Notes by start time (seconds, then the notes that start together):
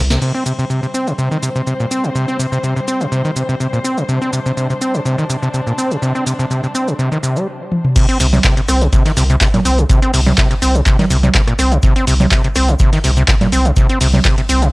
Already playing: C2
0.10 C3, snare, closed hi-hat, shaker
0.22 C3 G3 C4 C5, crash, shaker
0.35 C4, shaker
0.46 C3, shaker
0.59 C3, shaker
0.70 C3, shaker
0.83 C3, shaker
0.94 C4, shaker
1.07 C3, shaker
1.18 C3, shaker
1.31 D#3, shaker
1.43 C3, shaker
1.56 C3, shaker
1.67 C3, shaker
1.80 A#2, shaker
1.91 C4, shaker
2.04 C3, shaker
2.15 C3, shaker
2.28 C4, shaker
2.39 C3, shaker
2.52 C3, shaker
2.64 C3, shaker
2.76 C3, shaker
2.88 C4, shaker
3.01 C3, shaker
3.12 C3, shaker
3.25 D#3, shaker
3.36 C3, shaker
3.49 C3, shaker
3.60 C3, shaker
3.73 A#2, shaker
3.84 C4, shaker
3.97 C3, shaker
4.09 C3 D4, shaker
4.22 C4, shaker
4.33 C3, shaker
4.46 C3, shaker
4.57 C3, shaker
4.70 C3, shaker
4.81 C4, shaker
4.94 C3, shaker
5.05 C3, shaker
5.18 D#3, shaker
5.30 C3, shaker
5.42 C3, shaker
5.54 C3, shaker
5.67 A#2, shaker
5.78 C4, shaker
5.91 C3, shaker
6.02 C3, shaker
6.15 C4, shaker
6.26 C3, shaker
6.39 C3, shaker
6.51 C3, shaker
6.63 C3, shaker
6.75 C4, shaker
6.88 C3, shaker
6.99 C3, shaker
7.12 D#3, shaker
7.23 C3, shaker
7.36 G3, shaker
7.72 high tom
7.85 mid tom
7.96 C3, kick, closed hi-hat, crash, shaker
8.08 C4, closed hi-hat, shaker
8.20 C2 C3, open hi-hat, shaker
8.33 C3, closed hi-hat, low conga, shaker
8.44 C3, kick, snare, clap, closed hi-hat, shaker
8.57 C3, closed hi-hat, shaker
8.68 C2 C4, cross-stick, open hi-hat, shaker
8.81 C3, closed hi-hat, shaker
8.93 C3, kick, closed hi-hat, shaker
9.05 D#3, snare, closed hi-hat, shaker
9.17 C2 C3, snare, open hi-hat, shaker
9.30 C3, closed hi-hat, shaker
9.41 C3, kick, snare, clap, closed hi-hat, shaker
9.54 A#2, snare, closed hi-hat, low conga, shaker
9.65 C2 C4, open hi-hat, shaker
9.78 C3, closed hi-hat, shaker
9.89 C3, kick, closed hi-hat, shaker
10.02 C4, closed hi-hat, shaker
10.13 C2 C3, open hi-hat, shaker
10.26 C3, low conga, shaker
10.38 C3, kick, snare, clap, closed hi-hat, shaker
10.51 C3, closed hi-hat, shaker
10.62 C2 C4, open hi-hat, shaker
10.75 C3, closed hi-hat, shaker
10.86 C3, kick, clap, closed hi-hat, shaker
10.99 D#3, snare, closed hi-hat, low conga, shaker
11.10 C2 C3, open hi-hat, shaker
11.23 C3, closed hi-hat, low conga, shaker
11.35 C3, kick, snare, clap, closed hi-hat, shaker
11.47 A#2, cross-stick, closed hi-hat, shaker
11.59 C2 C4, cross-stick, open hi-hat, shaker
11.72 C3, closed hi-hat, shaker
11.83 C3, kick, closed hi-hat, shaker
11.96 C4, closed hi-hat, shaker
12.07 C2 C3, open hi-hat, shaker
12.20 C3, closed hi-hat, low conga, shaker
12.31 C3, kick, snare, clap, closed hi-hat, shaker
12.44 C3, closed hi-hat, shaker
12.55 C2 C4, cross-stick, open hi-hat, shaker
12.68 C3, closed hi-hat, shaker
12.79 C3, kick, closed hi-hat, shaker
12.92 D#3, snare, closed hi-hat, shaker
13.04 C2 C3, snare, open hi-hat, shaker
13.16 C3, closed hi-hat, shaker
13.28 C3, kick, snare, clap, closed hi-hat, shaker
13.41 A#2, snare, closed hi-hat, low conga, shaker
13.52 C2 C4, open hi-hat, shaker
13.65 C3, closed hi-hat, shaker
13.76 C3, kick, closed hi-hat, shaker
13.89 C4, closed hi-hat, shaker
14.01 C2 C3, open hi-hat, shaker
14.14 C3, low conga, shaker
14.24 C3, kick, snare, clap, closed hi-hat, shaker
14.38 C3, closed hi-hat, shaker
14.49 C2 C4, open hi-hat, shaker
14.62 C3, closed hi-hat, shaker